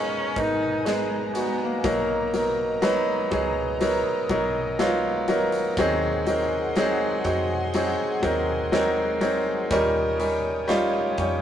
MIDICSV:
0, 0, Header, 1, 6, 480
1, 0, Start_track
1, 0, Tempo, 983607
1, 897, Time_signature, 4, 2, 24, 8
1, 5571, End_track
2, 0, Start_track
2, 0, Title_t, "Analog synth pad"
2, 0, Program_c, 0, 89
2, 0, Note_on_c, 0, 80, 81
2, 0, Note_on_c, 0, 82, 86
2, 878, Note_off_c, 0, 80, 0
2, 899, Note_on_c, 0, 75, 81
2, 2797, Note_off_c, 0, 82, 0
2, 2798, Note_off_c, 0, 75, 0
2, 2819, Note_on_c, 0, 68, 83
2, 2821, Note_on_c, 0, 84, 98
2, 2823, Note_on_c, 0, 78, 78
2, 4719, Note_off_c, 0, 68, 0
2, 4720, Note_off_c, 0, 84, 0
2, 4721, Note_off_c, 0, 78, 0
2, 4740, Note_on_c, 0, 73, 91
2, 4743, Note_on_c, 0, 79, 79
2, 4743, Note_on_c, 0, 87, 95
2, 5571, Note_off_c, 0, 73, 0
2, 5571, Note_off_c, 0, 79, 0
2, 5571, Note_off_c, 0, 87, 0
2, 5571, End_track
3, 0, Start_track
3, 0, Title_t, "Grand piano"
3, 0, Program_c, 1, 0
3, 0, Control_c, 1, 64, 127
3, 0, Note_on_c, 1, 47, 86
3, 0, Note_on_c, 1, 56, 76
3, 0, Note_on_c, 1, 59, 68
3, 0, Note_on_c, 1, 63, 68
3, 0, Note_on_c, 1, 65, 105
3, 0, Note_on_c, 1, 68, 82
3, 0, Note_on_c, 1, 70, 77
3, 165, Note_off_c, 1, 56, 0
3, 165, Note_off_c, 1, 59, 0
3, 165, Note_off_c, 1, 63, 0
3, 167, Note_off_c, 1, 68, 0
3, 173, Note_on_c, 1, 56, 72
3, 173, Note_on_c, 1, 59, 74
3, 177, Note_off_c, 1, 70, 0
3, 177, Note_on_c, 1, 70, 79
3, 178, Note_on_c, 1, 63, 72
3, 403, Note_off_c, 1, 56, 0
3, 403, Note_off_c, 1, 59, 0
3, 405, Note_off_c, 1, 63, 0
3, 405, Note_off_c, 1, 70, 0
3, 416, Note_on_c, 1, 56, 93
3, 417, Note_on_c, 1, 59, 90
3, 419, Note_on_c, 1, 63, 85
3, 420, Note_on_c, 1, 68, 100
3, 644, Note_off_c, 1, 56, 0
3, 645, Note_off_c, 1, 59, 0
3, 646, Note_off_c, 1, 63, 0
3, 646, Note_off_c, 1, 68, 0
3, 652, Note_on_c, 1, 56, 80
3, 656, Note_on_c, 1, 59, 74
3, 658, Note_on_c, 1, 63, 71
3, 661, Note_on_c, 1, 66, 82
3, 882, Note_off_c, 1, 56, 0
3, 885, Note_off_c, 1, 59, 0
3, 885, Note_off_c, 1, 63, 0
3, 887, Note_off_c, 1, 66, 0
3, 898, Note_on_c, 1, 54, 97
3, 899, Note_on_c, 1, 58, 89
3, 901, Note_off_c, 1, 47, 0
3, 901, Note_on_c, 1, 47, 64
3, 901, Note_on_c, 1, 63, 87
3, 902, Control_c, 1, 64, 0
3, 904, Note_on_c, 1, 70, 96
3, 907, Note_off_c, 1, 65, 0
3, 992, Control_c, 1, 64, 127
3, 1125, Note_off_c, 1, 54, 0
3, 1126, Note_off_c, 1, 58, 0
3, 1127, Note_off_c, 1, 63, 0
3, 1129, Note_off_c, 1, 70, 0
3, 1140, Note_on_c, 1, 54, 69
3, 1142, Note_on_c, 1, 59, 67
3, 1145, Note_on_c, 1, 63, 66
3, 1146, Note_on_c, 1, 70, 82
3, 1366, Note_off_c, 1, 54, 0
3, 1368, Note_off_c, 1, 59, 0
3, 1369, Note_off_c, 1, 63, 0
3, 1370, Note_off_c, 1, 70, 0
3, 1376, Note_on_c, 1, 54, 115
3, 1377, Note_on_c, 1, 59, 109
3, 1380, Note_on_c, 1, 63, 102
3, 1382, Note_on_c, 1, 71, 127
3, 1600, Note_off_c, 1, 47, 0
3, 1604, Note_off_c, 1, 54, 0
3, 1605, Note_off_c, 1, 59, 0
3, 1606, Note_off_c, 1, 63, 0
3, 1608, Note_off_c, 1, 71, 0
3, 1616, Note_on_c, 1, 54, 91
3, 1619, Note_on_c, 1, 59, 82
3, 1621, Note_on_c, 1, 63, 83
3, 1622, Note_on_c, 1, 68, 100
3, 1844, Note_off_c, 1, 54, 0
3, 1846, Note_off_c, 1, 59, 0
3, 1847, Note_off_c, 1, 63, 0
3, 1847, Note_off_c, 1, 68, 0
3, 1859, Note_on_c, 1, 54, 96
3, 1862, Note_on_c, 1, 63, 87
3, 1863, Note_on_c, 1, 59, 89
3, 1866, Note_on_c, 1, 70, 101
3, 2086, Note_off_c, 1, 54, 0
3, 2087, Note_off_c, 1, 63, 0
3, 2088, Note_off_c, 1, 59, 0
3, 2090, Note_off_c, 1, 70, 0
3, 2098, Note_on_c, 1, 54, 96
3, 2103, Note_on_c, 1, 59, 84
3, 2105, Note_on_c, 1, 63, 83
3, 2108, Note_on_c, 1, 70, 102
3, 2326, Note_off_c, 1, 54, 0
3, 2328, Note_off_c, 1, 59, 0
3, 2329, Note_off_c, 1, 63, 0
3, 2330, Note_off_c, 1, 70, 0
3, 2338, Note_on_c, 1, 54, 115
3, 2341, Note_on_c, 1, 59, 100
3, 2342, Note_on_c, 1, 63, 99
3, 2345, Note_on_c, 1, 65, 122
3, 2565, Note_off_c, 1, 54, 0
3, 2567, Note_off_c, 1, 59, 0
3, 2567, Note_off_c, 1, 63, 0
3, 2569, Note_off_c, 1, 65, 0
3, 2578, Note_on_c, 1, 54, 96
3, 2580, Note_on_c, 1, 59, 86
3, 2581, Note_on_c, 1, 63, 85
3, 2586, Note_on_c, 1, 70, 108
3, 2806, Note_off_c, 1, 54, 0
3, 2806, Note_off_c, 1, 59, 0
3, 2807, Note_off_c, 1, 63, 0
3, 2809, Note_off_c, 1, 70, 0
3, 2822, Control_c, 1, 64, 0
3, 2822, Note_on_c, 1, 60, 104
3, 2823, Note_on_c, 1, 54, 117
3, 2825, Note_on_c, 1, 51, 78
3, 2827, Note_on_c, 1, 63, 104
3, 2830, Note_on_c, 1, 68, 127
3, 2920, Control_c, 1, 64, 127
3, 3048, Note_off_c, 1, 54, 0
3, 3048, Note_off_c, 1, 60, 0
3, 3050, Note_off_c, 1, 63, 0
3, 3051, Note_off_c, 1, 68, 0
3, 3059, Note_on_c, 1, 54, 85
3, 3062, Note_on_c, 1, 63, 86
3, 3063, Note_on_c, 1, 60, 81
3, 3065, Note_on_c, 1, 70, 96
3, 3286, Note_off_c, 1, 54, 0
3, 3287, Note_off_c, 1, 63, 0
3, 3288, Note_off_c, 1, 60, 0
3, 3289, Note_off_c, 1, 70, 0
3, 3301, Note_on_c, 1, 54, 119
3, 3303, Note_on_c, 1, 60, 108
3, 3305, Note_on_c, 1, 63, 106
3, 3307, Note_on_c, 1, 68, 127
3, 3522, Note_off_c, 1, 51, 0
3, 3527, Note_off_c, 1, 54, 0
3, 3528, Note_off_c, 1, 60, 0
3, 3529, Note_off_c, 1, 63, 0
3, 3530, Note_off_c, 1, 68, 0
3, 3535, Note_on_c, 1, 66, 89
3, 3536, Note_on_c, 1, 60, 78
3, 3540, Note_on_c, 1, 63, 80
3, 3540, Note_on_c, 1, 68, 94
3, 3764, Note_off_c, 1, 66, 0
3, 3765, Note_off_c, 1, 60, 0
3, 3766, Note_off_c, 1, 63, 0
3, 3766, Note_off_c, 1, 68, 0
3, 3779, Note_on_c, 1, 54, 97
3, 3780, Note_on_c, 1, 60, 89
3, 3781, Note_on_c, 1, 63, 85
3, 3784, Note_on_c, 1, 68, 102
3, 4006, Note_off_c, 1, 54, 0
3, 4006, Note_off_c, 1, 60, 0
3, 4007, Note_off_c, 1, 63, 0
3, 4008, Note_off_c, 1, 68, 0
3, 4013, Note_on_c, 1, 54, 94
3, 4015, Note_on_c, 1, 60, 84
3, 4018, Note_on_c, 1, 63, 87
3, 4018, Note_on_c, 1, 70, 107
3, 4243, Note_off_c, 1, 54, 0
3, 4244, Note_off_c, 1, 60, 0
3, 4245, Note_off_c, 1, 63, 0
3, 4245, Note_off_c, 1, 70, 0
3, 4256, Note_on_c, 1, 54, 111
3, 4259, Note_on_c, 1, 60, 99
3, 4259, Note_on_c, 1, 63, 107
3, 4262, Note_on_c, 1, 70, 127
3, 4484, Note_off_c, 1, 54, 0
3, 4486, Note_off_c, 1, 60, 0
3, 4486, Note_off_c, 1, 63, 0
3, 4487, Note_off_c, 1, 70, 0
3, 4493, Note_on_c, 1, 54, 95
3, 4494, Note_on_c, 1, 60, 91
3, 4496, Note_on_c, 1, 63, 86
3, 4497, Note_on_c, 1, 70, 102
3, 4723, Note_off_c, 1, 54, 0
3, 4723, Note_off_c, 1, 60, 0
3, 4724, Note_off_c, 1, 63, 0
3, 4725, Note_off_c, 1, 70, 0
3, 4737, Note_on_c, 1, 55, 113
3, 4741, Note_on_c, 1, 61, 110
3, 4741, Note_on_c, 1, 63, 105
3, 4742, Note_on_c, 1, 46, 80
3, 4742, Note_on_c, 1, 70, 126
3, 4744, Control_c, 1, 64, 0
3, 4816, Control_c, 1, 64, 127
3, 4965, Note_off_c, 1, 55, 0
3, 4967, Note_off_c, 1, 61, 0
3, 4967, Note_off_c, 1, 63, 0
3, 4967, Note_off_c, 1, 70, 0
3, 4974, Note_on_c, 1, 55, 84
3, 4974, Note_on_c, 1, 61, 82
3, 4977, Note_on_c, 1, 63, 75
3, 4978, Note_on_c, 1, 70, 93
3, 5202, Note_off_c, 1, 55, 0
3, 5204, Note_off_c, 1, 61, 0
3, 5205, Note_off_c, 1, 63, 0
3, 5205, Note_off_c, 1, 70, 0
3, 5210, Note_on_c, 1, 55, 116
3, 5212, Note_on_c, 1, 61, 112
3, 5215, Note_on_c, 1, 63, 102
3, 5216, Note_on_c, 1, 65, 127
3, 5440, Note_off_c, 1, 46, 0
3, 5441, Note_off_c, 1, 55, 0
3, 5442, Note_off_c, 1, 61, 0
3, 5444, Note_off_c, 1, 63, 0
3, 5445, Note_off_c, 1, 65, 0
3, 5457, Note_on_c, 1, 55, 82
3, 5458, Note_on_c, 1, 61, 77
3, 5464, Note_on_c, 1, 63, 78
3, 5464, Note_on_c, 1, 73, 93
3, 5571, Note_off_c, 1, 55, 0
3, 5571, Note_off_c, 1, 61, 0
3, 5571, Note_off_c, 1, 63, 0
3, 5571, Note_off_c, 1, 73, 0
3, 5571, End_track
4, 0, Start_track
4, 0, Title_t, "Cello"
4, 0, Program_c, 2, 42
4, 0, Note_on_c, 2, 61, 108
4, 190, Note_on_c, 2, 63, 109
4, 197, Note_off_c, 2, 61, 0
4, 423, Note_off_c, 2, 63, 0
4, 433, Note_on_c, 2, 56, 78
4, 531, Note_off_c, 2, 56, 0
4, 675, Note_on_c, 2, 59, 98
4, 799, Note_on_c, 2, 58, 84
4, 806, Note_off_c, 2, 59, 0
4, 1268, Note_off_c, 2, 58, 0
4, 5571, End_track
5, 0, Start_track
5, 0, Title_t, "Fingered electric bass"
5, 0, Program_c, 3, 33
5, 177, Note_on_c, 3, 32, 86
5, 877, Note_off_c, 3, 32, 0
5, 899, Note_on_c, 3, 35, 97
5, 1598, Note_off_c, 3, 35, 0
5, 1617, Note_on_c, 3, 37, 85
5, 1958, Note_off_c, 3, 37, 0
5, 2095, Note_on_c, 3, 35, 91
5, 2796, Note_off_c, 3, 35, 0
5, 2816, Note_on_c, 3, 39, 98
5, 3517, Note_off_c, 3, 39, 0
5, 3538, Note_on_c, 3, 41, 92
5, 3878, Note_off_c, 3, 41, 0
5, 4014, Note_on_c, 3, 39, 89
5, 4716, Note_off_c, 3, 39, 0
5, 4738, Note_on_c, 3, 39, 108
5, 5438, Note_off_c, 3, 39, 0
5, 5458, Note_on_c, 3, 41, 81
5, 5571, Note_off_c, 3, 41, 0
5, 5571, End_track
6, 0, Start_track
6, 0, Title_t, "Drums"
6, 177, Note_on_c, 9, 36, 97
6, 180, Note_on_c, 9, 42, 62
6, 226, Note_off_c, 9, 36, 0
6, 229, Note_off_c, 9, 42, 0
6, 421, Note_on_c, 9, 42, 89
6, 426, Note_on_c, 9, 38, 105
6, 470, Note_off_c, 9, 42, 0
6, 474, Note_off_c, 9, 38, 0
6, 659, Note_on_c, 9, 42, 80
6, 707, Note_off_c, 9, 42, 0
6, 898, Note_on_c, 9, 36, 115
6, 898, Note_on_c, 9, 42, 98
6, 947, Note_off_c, 9, 36, 0
6, 947, Note_off_c, 9, 42, 0
6, 1140, Note_on_c, 9, 42, 77
6, 1189, Note_off_c, 9, 42, 0
6, 1377, Note_on_c, 9, 42, 78
6, 1383, Note_on_c, 9, 38, 104
6, 1426, Note_off_c, 9, 42, 0
6, 1432, Note_off_c, 9, 38, 0
6, 1617, Note_on_c, 9, 42, 77
6, 1619, Note_on_c, 9, 36, 88
6, 1666, Note_off_c, 9, 42, 0
6, 1668, Note_off_c, 9, 36, 0
6, 1858, Note_on_c, 9, 42, 84
6, 1907, Note_off_c, 9, 42, 0
6, 2096, Note_on_c, 9, 36, 98
6, 2096, Note_on_c, 9, 42, 64
6, 2145, Note_off_c, 9, 36, 0
6, 2145, Note_off_c, 9, 42, 0
6, 2339, Note_on_c, 9, 42, 92
6, 2344, Note_on_c, 9, 38, 106
6, 2388, Note_off_c, 9, 42, 0
6, 2392, Note_off_c, 9, 38, 0
6, 2576, Note_on_c, 9, 42, 78
6, 2625, Note_off_c, 9, 42, 0
6, 2696, Note_on_c, 9, 42, 57
6, 2744, Note_off_c, 9, 42, 0
6, 2816, Note_on_c, 9, 36, 114
6, 2816, Note_on_c, 9, 42, 104
6, 2864, Note_off_c, 9, 42, 0
6, 2865, Note_off_c, 9, 36, 0
6, 3058, Note_on_c, 9, 42, 70
6, 3106, Note_off_c, 9, 42, 0
6, 3297, Note_on_c, 9, 42, 77
6, 3303, Note_on_c, 9, 38, 111
6, 3346, Note_off_c, 9, 42, 0
6, 3352, Note_off_c, 9, 38, 0
6, 3535, Note_on_c, 9, 42, 77
6, 3537, Note_on_c, 9, 36, 87
6, 3584, Note_off_c, 9, 42, 0
6, 3586, Note_off_c, 9, 36, 0
6, 3776, Note_on_c, 9, 42, 89
6, 3825, Note_off_c, 9, 42, 0
6, 4015, Note_on_c, 9, 36, 96
6, 4017, Note_on_c, 9, 42, 67
6, 4064, Note_off_c, 9, 36, 0
6, 4066, Note_off_c, 9, 42, 0
6, 4260, Note_on_c, 9, 42, 99
6, 4264, Note_on_c, 9, 38, 115
6, 4309, Note_off_c, 9, 42, 0
6, 4313, Note_off_c, 9, 38, 0
6, 4496, Note_on_c, 9, 42, 79
6, 4544, Note_off_c, 9, 42, 0
6, 4737, Note_on_c, 9, 36, 117
6, 4737, Note_on_c, 9, 42, 107
6, 4786, Note_off_c, 9, 36, 0
6, 4786, Note_off_c, 9, 42, 0
6, 4976, Note_on_c, 9, 42, 71
6, 5025, Note_off_c, 9, 42, 0
6, 5216, Note_on_c, 9, 42, 82
6, 5222, Note_on_c, 9, 38, 112
6, 5265, Note_off_c, 9, 42, 0
6, 5271, Note_off_c, 9, 38, 0
6, 5454, Note_on_c, 9, 42, 80
6, 5457, Note_on_c, 9, 36, 83
6, 5503, Note_off_c, 9, 42, 0
6, 5506, Note_off_c, 9, 36, 0
6, 5571, End_track
0, 0, End_of_file